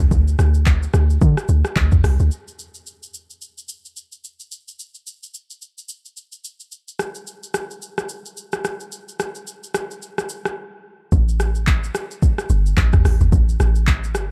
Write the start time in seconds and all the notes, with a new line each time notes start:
0.00 mid tom
0.11 D2, kick, shaker
0.28 shaker
0.39 D2, cross-stick, shaker
0.54 shaker
0.66 kick, clap, shaker
0.83 shaker
0.94 D2, cross-stick, shaker
1.10 shaker
1.21 D3, kick, shaker
1.37 cross-stick, shaker
1.48 D2, shaker
1.65 cross-stick, shaker
1.76 D2, kick, clap, shaker
1.92 kick, mid tom, shaker
2.04 C2, cross-stick, open hi-hat, shaker
2.19 D2, shaker
2.31 shaker
2.48 shaker
2.59 shaker
2.74 shaker
2.87 shaker
3.03 shaker
3.14 shaker
3.30 shaker
3.42 shaker
3.58 shaker
3.69 shaker
3.85 shaker
3.97 shaker
4.12 shaker
4.24 shaker
4.40 shaker
4.52 shaker
4.68 shaker
4.79 shaker
4.95 shaker
5.07 shaker
5.23 shaker
5.34 shaker
5.50 shaker
5.62 shaker
5.78 shaker
5.89 shaker
6.05 shaker
6.17 shaker
6.32 shaker
6.45 shaker
6.60 shaker
6.72 shaker
6.88 shaker
6.99 cross-stick, shaker
7.15 shaker
7.27 shaker
7.43 shaker
7.54 cross-stick, shaker
7.71 shaker
7.82 shaker
7.98 cross-stick, shaker
8.09 shaker
8.26 shaker
8.37 shaker
8.52 cross-stick, shaker
8.65 cross-stick, shaker
8.80 shaker
8.92 shaker
9.09 shaker
9.20 cross-stick, shaker
9.35 shaker
9.47 shaker
9.64 shaker
9.74 cross-stick, shaker
9.91 shaker
10.02 shaker
10.18 cross-stick, shaker
10.29 shaker
10.45 cross-stick, shaker
11.12 A1, kick, shaker
11.29 shaker
11.40 cross-stick, shaker
11.55 shaker
11.67 kick, clap, shaker
11.84 shaker
11.95 cross-stick, shaker
12.11 shaker
12.22 kick, shaker
12.38 cross-stick, shaker
12.49 G1, shaker
12.66 shaker
12.77 A1, kick, clap, shaker
12.93 kick, cross-stick, mid tom, shaker
13.05 A1, cross-stick, open hi-hat, shaker
13.21 G1, mid tom, shaker
13.32 A1, kick, shaker
13.49 shaker
13.60 A1, cross-stick, shaker
13.75 shaker
13.87 kick, clap, shaker
14.04 shaker
14.15 G1, cross-stick, shaker